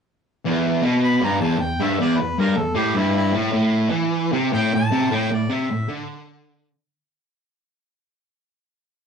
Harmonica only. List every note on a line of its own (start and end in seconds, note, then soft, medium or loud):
1.04 1.22 B5 medium
1.24 1.40 A#5 medium
1.40 1.63 A5 medium
1.61 1.85 G5 loud
1.84 2.01 E5 loud
2.01 2.19 D5 loud
2.18 2.37 B4 medium
2.40 2.59 A#4 medium
2.57 2.75 A4 loud
2.76 2.99 G4 medium
2.97 3.16 E4 loud
3.16 3.35 E4 loud
4.54 4.72 G5 loud
4.75 5.16 A5 loud
5.15 5.32 G5 loud
5.34 5.55 D5 medium
5.54 5.91 E5 loud